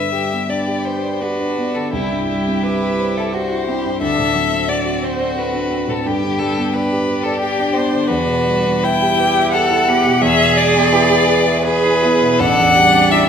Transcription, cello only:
0.49 1.21 B3 medium
1.20 1.91 D4 medium
1.92 2.65 E4 medium
2.64 3.35 G4 medium
3.33 3.69 F#4 medium
3.68 4.02 E4 medium
4.02 4.37 D4 medium
4.36 6.06 C4 medium
6.04 6.75 B3 medium
6.74 8.85 D4 medium
8.83 9.18 E4 medium
9.19 9.55 G4 medium
9.54 9.90 A4 medium
9.89 10.24 G4 medium
10.22 11.64 G#4 loud
11.65 12.05 G#4 medium
12.03 12.42 E4 medium
12.40 13.29 D4 loud

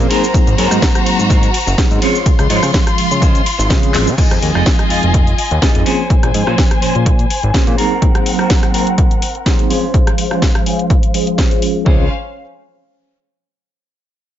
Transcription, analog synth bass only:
0.34 0.44 G#1 soft
0.47 0.55 G#1 loud
0.59 0.68 F#2 medium
0.71 0.80 G#2 medium
1.07 1.17 G#2 soft
1.19 1.50 G#2 medium
1.67 1.75 F#1 loud
1.91 1.99 G#2 loud
2.26 2.36 C#2 soft
2.39 2.47 C#2 loud
2.50 2.60 G#2 medium
2.63 2.71 C#3 medium
2.98 3.08 C#3 soft
3.11 3.42 C#3 medium
3.59 3.72 G#1 loud
3.70 3.96 C#3 medium
3.94 4.08 G#1 medium
4.07 4.15 C#3 loud
4.18 4.28 F2 soft
4.31 4.39 F2 loud
4.42 4.52 D#2 medium
4.55 4.63 F1 medium
4.91 5.01 F1 soft
5.03 5.34 F1 medium
5.51 5.59 D#2 loud
5.75 5.83 F1 medium
6.10 6.20 A#1 soft
6.23 6.31 A#1 loud
6.34 6.44 G#2 medium
6.47 6.55 A#2 medium
6.83 6.93 A#2 soft
6.95 7.26 A#2 medium
7.43 7.52 G#1 loud
7.67 7.75 A#2 loud
11.86 12.09 C#2 medium

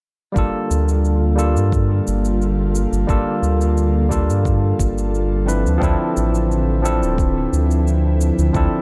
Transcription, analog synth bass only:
0.36 0.50 G1 medium
0.71 1.58 D2 medium
1.56 2.01 G2 medium
2.08 2.87 G1 medium
2.92 3.05 G1 medium
3.09 3.23 G1 loud
3.42 4.30 D2 medium
4.29 4.73 G2 medium
4.80 5.67 G1 medium
5.65 5.78 D2 medium
5.82 5.95 D2 loud
6.17 7.04 A1 medium
7.02 7.47 D1 medium
7.53 8.32 D2 medium
8.38 8.51 D2 medium
8.54 8.68 D2 medium

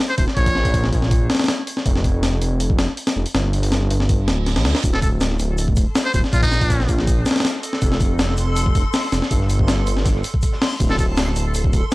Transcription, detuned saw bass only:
0.18 0.27 D1 medium
0.37 0.91 A#1 loud
0.93 1.28 A#1 loud
1.86 2.40 F1 loud
2.41 2.77 F1 loud
2.79 2.88 F1 medium
3.16 3.25 F1 medium
3.35 3.89 G1 loud
3.91 4.29 G1 loud
4.28 4.58 D1 medium
4.56 4.67 A#1 loud
4.65 4.74 D2 loud
4.84 5.38 D1 loud
5.40 5.75 D1 loud
5.77 5.86 D1 medium
6.14 6.23 D1 medium
6.33 6.87 A#1 loud
6.89 7.25 A#1 loud
7.82 8.36 F1 loud
8.38 8.74 F1 medium
8.75 8.84 F1 medium
9.12 9.21 F1 medium
9.31 9.85 G1 loud
9.87 10.23 G1 medium
10.80 11.35 D1 loud
11.36 11.72 D1 medium
11.73 11.82 D1 medium

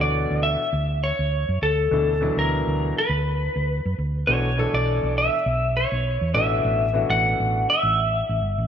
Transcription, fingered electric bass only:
0.00 0.25 D2 medium
0.31 0.55 D2 medium
0.73 1.11 D2 medium
1.19 1.43 D2 medium
1.49 1.60 F#2 medium
1.62 1.87 D2 medium
1.91 2.29 D2 medium
2.37 2.62 D2 medium
2.67 2.92 D2 medium
3.09 3.48 D2 medium
3.56 3.80 D2 medium
3.85 3.96 F#2 medium
3.98 4.23 D2 medium
4.28 4.66 B1 medium
4.74 4.98 B1 medium
5.03 5.28 B1 medium
5.46 5.84 B1 medium
5.92 6.16 B1 medium
6.21 6.33 E2 medium
6.34 6.59 A1 medium
6.65 7.03 A1 medium
7.10 7.35 A1 medium
7.40 7.64 A1 medium
7.83 8.21 A1 medium
8.29 8.40 A1 medium
8.42 8.57 G1 medium
8.58 8.67 A1 medium

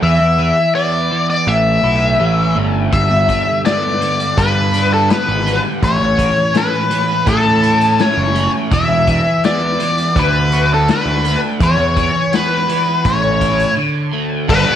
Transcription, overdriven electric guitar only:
0.03 0.38 E3 medium
0.39 1.10 E3 medium
0.75 1.48 B3 medium
1.11 1.48 E3 medium
1.47 2.91 A2 medium
1.84 2.92 E4 medium
2.20 2.92 C#4 medium
2.56 2.93 A3 medium
2.92 4.73 G2 medium
3.29 4.00 D3 medium
3.65 5.10 B3 medium
4.01 5.82 D3 medium
4.38 5.45 G3 medium
4.74 5.82 D4 medium
5.11 5.83 B3 medium
5.46 5.82 G3 medium
5.83 7.63 A2 medium
6.18 6.89 E3 medium
6.54 7.98 C#4 medium
6.91 8.70 E3 medium
7.26 8.34 A3 medium
7.63 8.71 E4 medium
7.99 8.71 C#4 medium
8.35 8.71 A3 medium
8.71 9.07 E3 medium
9.08 9.79 E3 medium
9.44 10.16 B3 medium
9.80 10.16 E3 medium
10.17 11.61 D3 medium
10.53 11.61 F#4 medium
10.89 11.61 D4 medium
11.25 11.60 A3 medium
11.61 11.96 E3 medium
11.97 12.68 E3 medium
12.33 13.05 B3 medium
12.69 13.05 E3 medium
13.05 13.77 A2 medium
13.41 13.77 E4 medium
13.77 14.47 D3 medium
14.13 14.49 A3 medium
14.48 14.76 G2 medium
14.48 14.76 D3 medium
14.48 14.76 G3 medium
14.48 14.76 B3 medium
14.48 14.76 D4 medium

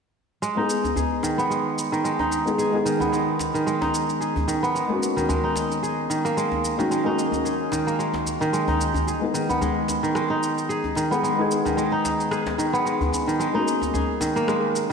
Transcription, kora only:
0.42 1.28 G#3 medium
0.57 2.19 D#4 medium
0.96 2.33 G#4 medium
1.23 1.91 D#3 medium
1.38 3.00 B3 medium
1.50 1.96 G#3 medium
1.92 2.84 D#3 medium
2.04 2.90 G#3 medium
2.20 3.81 D#4 medium
2.58 3.95 G#4 medium
2.85 3.53 D#3 medium
3.00 4.62 B3 medium
3.12 3.58 G#3 medium
3.54 4.46 D#3 medium
3.66 4.53 G#3 medium
3.81 5.43 D#4 medium
4.21 5.57 G#4 medium
4.48 4.80 D#3 medium
4.63 6.31 B3 medium
4.75 5.20 G#3 medium
5.17 6.09 D#3 medium
5.29 6.15 G#3 medium
5.44 7.06 D#4 medium
5.83 7.19 G#4 medium
6.10 6.78 D#3 medium
6.25 7.86 A#3 medium
6.37 6.82 G#3 medium
6.79 7.71 D#3 medium
6.91 7.77 G#3 medium
7.06 8.68 D#4 medium
7.45 8.81 G#4 medium
7.72 8.40 D#3 medium
7.87 9.55 A#3 medium
7.99 8.45 G#3 medium
8.41 9.12 D#3 medium
8.53 9.12 G#3 medium
8.68 10.30 D#4 medium
9.07 10.44 G#4 medium
9.34 10.02 D#3 medium
9.49 11.11 B3 medium
9.61 10.07 G#3 medium
10.03 10.95 D#3 medium
10.15 11.01 G#3 medium
10.30 11.92 D#4 medium
10.69 12.06 G#4 medium
10.96 11.64 D#3 medium
11.11 12.73 B3 medium
11.23 11.69 G#3 medium
11.65 12.57 D#3 medium
11.77 12.63 G#3 medium
11.92 13.54 D#4 medium
12.31 13.68 G#4 medium
12.58 13.26 D#3 medium
12.73 14.42 B3 loud
12.85 13.31 G#3 medium
13.28 13.45 D#3 medium
13.39 14.26 G#3 medium
13.55 14.93 D#4 medium
13.94 14.93 G#4 medium
14.20 14.89 D#3 medium
14.36 14.93 A#3 medium
14.48 14.93 G#3 medium

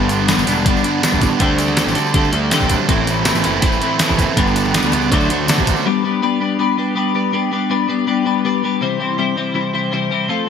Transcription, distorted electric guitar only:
0.00 0.28 G2 medium
0.00 0.27 D3 loud
0.00 0.12 G3 medium
0.09 0.29 G3 medium
0.09 0.29 B3 medium
0.09 0.31 D4 medium
0.28 0.48 D3 medium
0.28 0.48 G3 medium
0.28 0.47 B3 medium
0.28 0.46 D4 medium
0.47 0.86 G2 medium
0.47 0.63 D3 medium
0.47 0.64 G3 medium
0.47 0.66 B3 medium
0.47 0.67 D4 medium
0.64 1.01 D3 medium
0.64 0.85 G3 medium
0.64 0.84 B3 medium
0.64 0.82 D4 medium
0.83 1.01 G3 medium
0.83 1.02 B3 medium
0.83 1.03 D4 medium
1.01 1.38 G2 medium
1.01 1.37 D3 medium
1.01 1.22 G3 medium
1.01 1.21 B3 medium
1.01 1.19 D4 loud
1.20 1.40 G3 medium
1.20 1.39 B3 medium
1.20 1.38 D4 medium
1.38 1.75 D3 medium
1.38 1.58 A3 loud
1.42 1.56 D4 loud
1.57 1.79 A3 medium
1.57 1.78 D4 medium
1.76 1.97 D3 medium
1.76 1.95 A3 medium
1.76 1.93 D4 medium
1.94 2.12 D3 medium
1.94 2.14 A3 medium
1.94 2.15 D4 loud
2.13 2.49 D3 medium
2.13 2.33 A3 medium
2.13 2.31 D4 medium
2.32 2.52 A3 medium
2.32 2.53 D4 medium
2.51 2.87 D3 medium
2.51 2.71 A3 medium
2.51 2.69 D4 loud
2.70 2.89 F#3 medium
2.70 2.89 A3 medium
2.70 2.88 D4 medium
2.88 3.25 A2 loud
2.88 3.23 E3 medium
2.88 3.08 A3 loud
2.88 3.07 C4 loud
2.92 3.05 E4 loud
3.06 3.24 A3 medium
3.06 3.25 C4 medium
3.06 3.26 E4 medium
3.24 3.44 E3 medium
3.24 3.43 A3 medium
3.24 3.42 C4 medium
3.24 3.41 E4 loud
3.42 3.82 A2 medium
3.42 3.60 E3 medium
3.42 3.62 A3 medium
3.42 3.63 C4 medium
3.42 3.64 E4 medium
3.61 3.98 E3 medium
3.61 3.82 A3 medium
3.61 3.80 C4 loud
3.61 3.79 E4 medium
3.80 3.99 A3 medium
3.80 4.00 C4 medium
3.80 4.01 E4 medium
3.98 4.35 A2 loud
3.98 4.36 E3 medium
3.98 4.20 A3 loud
3.98 4.19 C4 loud
3.98 4.17 E4 loud
4.18 4.38 A3 medium
4.18 4.37 C4 medium
4.18 4.36 E4 medium
4.36 4.74 G2 medium
4.36 4.71 D3 loud
4.36 4.57 G3 loud
4.36 4.55 B3 loud
4.36 4.52 D4 loud
4.54 4.74 B3 medium
4.54 4.75 D4 medium
4.58 4.73 G3 medium
4.73 4.93 D3 medium
4.73 4.92 G3 medium
4.73 4.91 B3 medium
4.73 4.90 D4 medium
4.91 5.11 G2 medium
4.91 5.09 D3 medium
4.91 5.11 G3 medium
4.91 5.10 B3 medium
4.91 5.10 D4 medium
5.10 5.45 D3 loud
5.10 5.31 F#3 loud
5.10 5.30 A3 loud
5.10 5.27 D4 loud
5.28 5.47 F#3 medium
5.28 5.48 A3 medium
5.28 5.49 D4 medium
5.46 5.84 D3 medium
5.46 5.68 F#3 medium
5.46 5.66 A3 medium
5.46 5.65 D4 loud
5.66 5.86 F#3 medium
5.66 5.85 A3 medium
5.66 5.84 D4 medium

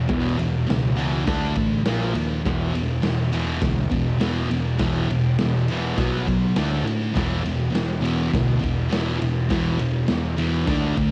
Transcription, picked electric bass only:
0.09 0.36 E1 medium
0.40 0.66 E1 medium
0.69 1.23 C#2 medium
1.28 1.54 D2 medium
1.58 1.84 A1 medium
1.85 2.13 A#1 medium
2.14 2.41 D#2 medium
2.45 2.72 E1 medium
2.74 3.01 E1 medium
3.03 3.30 E1 medium
3.32 3.59 E1 medium
3.61 3.89 D2 medium
3.92 4.18 E1 medium
4.19 4.47 E1 medium
4.49 4.77 E1 medium
4.81 5.07 E1 loud
5.09 5.36 E1 medium
5.39 5.93 E1 medium
5.98 6.24 B1 medium
6.28 6.54 B1 medium
6.56 6.83 D2 medium
6.83 7.11 A2 medium
7.15 7.42 E1 loud
7.45 7.71 E1 medium
7.72 7.99 E1 medium
8.00 8.28 E1 medium
8.34 8.60 D2 medium
8.62 8.89 E1 medium
8.92 9.18 E1 medium
9.22 9.48 E1 medium
9.51 9.77 E1 medium
9.79 10.06 E1 medium
10.09 10.63 E2 medium
10.68 10.95 D2 medium
10.97 11.11 D2 medium

